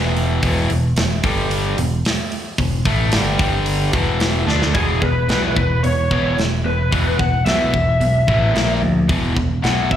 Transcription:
0.00 0.39 E1 medium
0.00 0.41 E2 medium
0.00 0.42 B2 medium
0.00 0.42 E3 medium
0.17 open hi-hat soft
0.42 0.68 E1 loud
0.42 0.68 E2 medium
0.42 0.69 B2 loud
0.42 0.69 E3 loud
0.42 kick medium
0.42 open hi-hat medium
0.69 0.94 E1 medium
0.69 0.91 E2 medium
0.69 0.91 B2 medium
0.69 open hi-hat soft
0.96 1.22 E1 medium
0.96 1.18 E2 medium
0.96 1.19 B2 medium
0.96 snare loud
0.96 open hi-hat medium
1.23 1.74 G1 medium
1.23 1.77 G2 medium
1.23 1.77 D3 medium
1.23 1.77 G3 loud
1.23 kick loud
1.23 open hi-hat medium
1.51 open hi-hat medium
1.77 2.02 E1 medium
1.77 1.99 E2 medium
1.77 2.00 B2 medium
1.77 open hi-hat medium
2.05 snare loud
2.05 open hi-hat medium
2.32 open hi-hat soft
2.58 2.84 E1 medium
2.58 2.80 E2 medium
2.58 2.80 B2 medium
2.58 kick medium
2.58 open hi-hat medium
2.85 3.11 A1 medium
2.85 3.12 A2 medium
2.85 3.12 E3 medium
2.85 3.13 A3 loud
2.85 kick medium
2.85 open hi-hat medium
3.12 3.38 G1 medium
3.12 3.37 G2 medium
3.12 3.38 D3 medium
3.12 3.39 G3 medium
3.12 snare loud
3.12 open hi-hat medium
3.39 3.90 G1 medium
3.39 3.92 G2 medium
3.39 3.93 D3 medium
3.39 3.93 G3 loud
3.39 kick loud
3.39 open hi-hat medium
3.66 open hi-hat medium
3.93 4.44 E1 medium
3.93 4.47 E2 medium
3.93 4.46 B2 medium
3.93 4.47 E3 medium
3.93 kick loud
3.93 open hi-hat medium
4.20 snare loud
4.20 open hi-hat medium
4.47 4.73 D2 medium
4.47 4.74 D3 medium
4.47 4.74 A3 medium
4.47 4.74 D4 medium
4.47 snare medium
4.62 snare medium
4.74 5.00 E1 medium
4.74 5.00 E2 medium
4.74 5.01 B2 medium
4.74 5.01 E3 medium
4.74 5.03 G#4 medium
4.74 kick loud
4.74 open hi-hat soft
5.02 5.28 E1 medium
5.02 5.27 E2 medium
5.02 5.27 B2 medium
5.02 5.53 B4 medium
5.02 kick medium
5.29 5.55 B1 medium
5.29 5.54 E2 medium
5.29 5.55 B2 medium
5.29 5.55 E3 medium
5.29 snare loud
5.29 open hi-hat soft
5.56 5.82 E1 medium
5.56 5.81 E2 medium
5.56 5.81 B2 medium
5.56 5.84 B4 medium
5.56 kick medium
5.84 6.09 E1 medium
5.84 6.08 E2 medium
5.84 6.08 B2 medium
5.84 6.34 C#5 medium
5.84 open hi-hat soft
6.11 6.37 E1 medium
6.11 6.36 E2 medium
6.11 6.37 B2 medium
6.11 6.37 E3 medium
6.11 kick medium
6.38 6.89 E1 medium
6.38 6.62 E2 medium
6.38 6.63 B2 medium
6.38 snare medium
6.38 open hi-hat soft
6.65 6.89 E2 medium
6.65 6.89 B2 medium
6.65 7.16 B4 medium
6.91 7.44 E1 medium
6.91 7.17 E2 medium
6.91 7.17 B2 medium
6.91 7.18 E3 medium
6.91 kick loud
6.91 open hi-hat soft
7.18 7.43 E2 medium
7.18 7.43 B2 medium
7.18 7.46 F#5 loud
7.18 kick medium
7.46 7.72 B1 medium
7.46 7.72 E2 medium
7.46 7.72 B2 medium
7.46 7.72 E3 medium
7.46 8.78 E5 medium
7.46 snare loud
7.46 open hi-hat soft
7.73 7.99 E1 medium
7.73 7.98 E2 medium
7.73 7.98 B2 medium
7.73 kick medium
8.00 8.26 B1 medium
8.00 8.25 E2 medium
8.00 8.25 B2 medium
8.00 open hi-hat soft
8.27 8.53 A1 medium
8.27 8.53 E2 medium
8.27 8.53 B2 medium
8.27 8.54 E3 medium
8.27 kick medium
8.54 8.81 A#1 medium
8.54 8.80 A#2 medium
8.54 8.80 F3 medium
8.54 8.80 A#3 medium
8.54 snare loud
8.54 open hi-hat soft
8.82 9.08 D2 medium
8.82 9.06 A#2 medium
8.82 9.07 F3 medium
9.08 9.35 E1 medium
9.08 9.34 E2 medium
9.08 9.35 B2 medium
9.08 9.35 E3 loud
9.08 kick loud
9.08 open hi-hat soft
9.35 9.62 E1 medium
9.35 9.60 E2 medium
9.35 9.61 B2 medium
9.35 kick medium
9.62 9.89 B1 medium
9.62 9.89 E2 medium
9.62 9.89 B2 medium
9.62 9.89 E3 medium
9.62 9.91 F#5 loud
9.62 snare loud
9.62 open hi-hat soft
9.90 9.97 E1 medium
9.90 9.97 E2 medium
9.90 9.97 B2 medium
9.90 9.97 E5 medium
9.90 kick medium

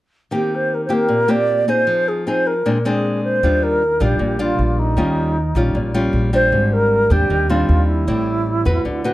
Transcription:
0.31 1.07 D#3 medium
0.31 0.87 A#3 soft
0.31 0.87 C4 soft
0.31 0.87 G4 medium
0.31 0.57 G4 medium
0.55 0.76 C5 medium
0.74 0.84 A#4 medium
0.85 1.25 A#3 medium
0.85 0.95 C5 medium
0.90 1.26 C4 medium
0.90 1.26 G4 medium
0.90 1.32 A#4 medium
1.09 1.85 A#2 medium
1.28 1.64 A#3 medium
1.28 1.64 C4 medium
1.28 1.65 G4 medium
1.28 1.71 D5 loud
1.68 2.23 C4 medium
1.68 2.23 D#4 medium
1.68 2.23 G#4 medium
1.68 2.10 C5 medium
1.87 2.63 F3 medium
2.08 2.27 G#4 medium
2.27 2.53 C4 soft
2.27 2.53 D#4 soft
2.27 2.53 G#4 soft
2.27 2.48 C5 medium
2.47 2.87 A#4 medium
2.66 3.41 A#2 medium
2.66 2.77 G#3 soft
2.66 2.77 C4 medium
2.66 2.77 D4 medium
2.85 3.40 G#3 medium
2.85 3.40 C4 medium
2.85 3.40 D4 medium
2.85 3.23 G#4 medium
3.24 3.65 C5 medium
3.43 3.97 D#2 medium
3.43 4.19 D#3 soft
3.43 3.81 G3 medium
3.43 3.82 D4 medium
3.43 3.82 F4 medium
3.63 4.04 A#4 medium
4.00 4.19 A#1 loud
4.00 4.36 G3 medium
4.00 4.36 D4 medium
4.00 4.37 F4 medium
4.00 4.43 G4 medium
4.19 4.56 A#1 medium
4.19 4.95 A#2 medium
4.39 4.94 G3 medium
4.39 4.94 D4 medium
4.39 4.94 F4 medium
4.39 4.81 F4 medium
4.59 4.95 A#1 medium
4.79 5.95 D#4 medium
4.97 5.51 D#2 medium
4.97 5.73 D#3 medium
4.97 5.36 G3 soft
4.97 5.36 C#4 medium
4.97 5.36 F4 medium
5.55 5.73 A#1 medium
5.55 5.91 G3 soft
5.55 5.92 C#4 medium
5.55 5.92 F4 medium
5.75 6.11 A#1 medium
5.75 6.50 A#2 medium
5.94 6.30 G3 medium
5.94 6.30 C#4 medium
5.94 6.30 F4 medium
6.13 6.49 A#1 medium
6.33 7.07 G3 medium
6.33 7.08 C4 medium
6.33 7.08 D4 medium
6.33 6.75 C5 loud
6.52 7.06 G#1 medium
6.52 7.28 G#2 medium
6.73 7.13 A#4 loud
7.10 7.28 D#2 loud
7.10 7.46 G3 medium
7.10 7.46 C4 soft
7.10 7.47 D4 medium
7.10 7.52 G4 loud
7.30 7.66 D#2 medium
7.30 8.06 D#3 medium
7.49 8.04 G3 medium
7.49 8.05 C4 medium
7.49 8.05 D4 medium
7.49 7.90 F4 medium
7.69 8.05 D#2 medium
7.89 9.05 E4 medium
8.07 8.62 A1 medium
8.07 8.83 A2 medium
8.07 8.63 G3 medium
8.07 8.63 C4 soft
8.07 8.63 E4 medium
8.65 8.84 E2 loud
8.65 9.01 C4 soft
8.65 9.01 F#4 medium
8.65 9.02 B4 medium
8.85 9.13 D2 medium
8.85 9.13 D3 soft
9.04 9.13 C4 medium
9.04 9.13 F#4 medium
9.04 9.13 B4 medium

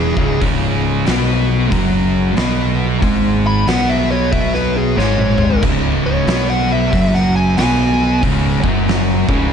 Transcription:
0.00 0.12 E1 loud
0.00 0.15 E2 loud
0.00 0.16 E3 loud
0.00 0.39 G#4 loud
0.17 0.39 C#1 loud
0.17 0.40 C#2 loud
0.17 0.41 C#3 loud
0.17 kick loud
0.41 1.02 C#1 medium
0.41 1.06 C#2 medium
0.41 1.07 C#3 loud
0.41 kick loud
0.41 open hi-hat medium
1.06 1.68 B1 medium
1.06 1.71 B2 medium
1.06 1.72 B3 medium
1.06 snare loud
1.06 open hi-hat medium
1.72 2.33 F#1 medium
1.72 2.36 F#2 loud
1.72 2.37 F#3 loud
1.72 kick loud
1.72 open hi-hat medium
2.37 2.98 B1 medium
2.37 3.02 B2 loud
2.37 3.02 B3 loud
2.37 snare loud
2.37 open hi-hat medium
3.02 3.63 G#1 loud
3.02 3.67 G#2 loud
3.02 3.67 G#3 loud
3.02 kick loud
3.02 open hi-hat medium
3.47 3.67 B5 loud
3.67 4.94 B1 medium
3.67 4.97 B2 medium
3.67 4.98 B3 medium
3.67 3.89 F#5 loud
3.67 snare loud
3.67 open hi-hat medium
3.89 4.10 E5 medium
4.11 4.32 C#5 medium
4.32 4.53 E5 medium
4.32 kick loud
4.32 open hi-hat medium
4.54 4.75 B4 medium
4.54 snare soft
4.77 4.98 G#4 medium
4.96 5.58 G#1 medium
4.96 5.62 G#2 medium
4.96 5.62 G#3 medium
4.96 5.61 C#5 loud
4.96 snare medium
5.18 high tom medium
5.38 mid tom medium
5.50 floor tom medium
5.62 6.24 C#1 loud
5.62 6.27 C#2 medium
5.62 6.28 C#3 loud
5.62 kick loud
5.62 crash loud
6.06 6.48 C#5 loud
6.27 6.88 B1 loud
6.27 6.92 B2 medium
6.27 6.93 B3 loud
6.27 snare loud
6.27 open hi-hat medium
6.50 6.71 F#5 medium
6.72 7.14 E5 medium
6.92 7.54 F#1 loud
6.92 7.57 F#2 medium
6.92 7.57 F#3 loud
6.92 kick loud
6.92 open hi-hat medium
7.15 7.36 F#5 medium
7.15 snare soft
7.36 7.57 G#5 loud
7.57 8.19 B1 medium
7.57 8.22 B2 loud
7.57 8.22 B3 loud
7.57 8.21 G#5 loud
7.57 snare loud
7.57 open hi-hat medium
8.22 8.60 C#1 loud
8.22 8.62 C#2 loud
8.22 8.62 C#3 loud
8.22 kick loud
8.22 open hi-hat medium
8.62 9.24 F#1 medium
8.62 9.27 F#2 loud
8.62 9.27 F#3 loud
8.62 kick loud
8.88 snare loud
8.88 open hi-hat medium
9.28 9.53 C#1 loud
9.28 9.53 C#2 medium
9.28 9.53 C#3 loud
9.28 kick loud

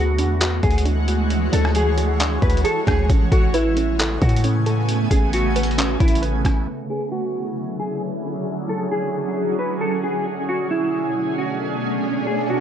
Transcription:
0.00 0.20 D2 loud
0.00 3.06 E3 medium
0.00 3.06 G#3 medium
0.00 0.17 D4 medium
0.00 0.40 F#4 medium
0.00 0.59 F#4 loud
0.00 3.06 F#4 medium
0.00 1.30 G#4 loud
0.00 3.06 C#5 medium
0.18 0.61 E2 loud
0.18 0.84 D4 medium
0.18 closed hi-hat medium
0.41 1.07 F#4 loud
0.41 clap loud
0.41 closed hi-hat medium
0.63 1.49 D2 loud
0.63 0.85 G#4 medium
0.63 kick loud
0.63 closed hi-hat soft
0.71 closed hi-hat medium
0.78 closed hi-hat medium
0.85 1.51 D4 medium
0.85 closed hi-hat medium
1.08 2.42 F#4 medium
1.08 closed hi-hat medium
1.30 closed hi-hat medium
1.52 2.39 D2 loud
1.52 2.19 D4 medium
1.52 1.74 A4 medium
1.52 closed hi-hat medium
1.65 cross-stick medium
1.75 2.38 G#4 medium
1.75 closed hi-hat medium
1.98 2.63 G#4 medium
1.98 closed hi-hat medium
2.20 2.86 D4 loud
2.20 clap loud
2.20 closed hi-hat medium
2.42 2.64 D2 loud
2.42 2.64 B4 medium
2.42 kick loud
2.42 closed hi-hat soft
2.50 closed hi-hat medium
2.57 closed hi-hat medium
2.64 3.09 G#4 loud
2.64 2.86 A4 medium
2.64 closed hi-hat medium
2.87 3.09 D2 loud
2.87 3.09 D4 medium
2.87 3.08 G#4 medium
2.87 kick medium
2.87 cross-stick medium
2.87 closed hi-hat medium
3.09 3.31 A1 loud
3.09 6.64 C#3 medium
3.09 6.64 A3 medium
3.09 6.64 B3 medium
3.09 3.75 C#4 medium
3.09 6.64 G#5 medium
3.09 kick loud
3.09 closed hi-hat medium
3.32 4.18 A1 loud
3.32 3.53 F#4 medium
3.32 3.98 A4 loud
3.32 kick loud
3.32 closed hi-hat medium
3.54 4.17 E4 medium
3.54 4.88 B4 loud
3.54 closed hi-hat medium
3.77 4.43 C#4 medium
3.77 closed hi-hat medium
3.99 4.65 A4 loud
3.99 clap loud
3.99 closed hi-hat medium
4.21 5.07 A2 loud
4.21 4.43 F#4 medium
4.21 kick loud
4.21 closed hi-hat soft
4.29 closed hi-hat medium
4.36 closed hi-hat medium
4.44 5.10 C#4 medium
4.44 closed hi-hat medium
4.66 6.01 A4 medium
4.66 closed hi-hat medium
4.88 closed hi-hat medium
5.11 5.97 A1 loud
5.11 5.77 C#4 medium
5.11 5.32 G#4 medium
5.11 kick loud
5.11 closed hi-hat medium
5.33 5.97 F#4 medium
5.33 closed hi-hat medium
5.56 6.21 B4 medium
5.56 closed hi-hat medium
5.63 closed hi-hat medium
5.71 closed hi-hat soft
5.78 6.44 C#4 loud
5.78 clap loud
5.78 closed hi-hat medium
6.00 6.43 A1 loud
6.00 6.22 E4 medium
6.00 kick loud
6.00 closed hi-hat medium
6.08 closed hi-hat medium
6.16 closed hi-hat medium
6.22 6.67 B4 loud
6.22 closed hi-hat medium
6.45 6.67 A1 loud
6.45 6.68 C#4 medium
6.45 kick medium
6.45 cross-stick medium
6.45 closed hi-hat medium
6.67 10.22 D3 medium
6.67 10.22 F#3 medium
6.67 10.22 C#4 medium
6.67 8.45 E4 medium
6.67 12.60 G#4 medium
6.90 7.11 G#4 medium
7.12 7.75 F#4 medium
7.80 8.01 G#4 medium
8.47 10.24 F#4 medium
8.69 8.91 A4 medium
8.92 9.55 G#4 medium
9.59 9.80 B4 medium
9.81 10.02 A4 medium
10.04 10.25 G#4 medium
10.26 12.60 B2 medium
10.26 12.60 A3 medium
10.26 12.60 C#4 medium
10.26 swell medium
10.49 10.70 F#4 medium
10.71 11.34 E4 medium
11.38 11.59 F#4 medium
12.27 12.48 G#4 medium
12.50 12.60 F#4 medium

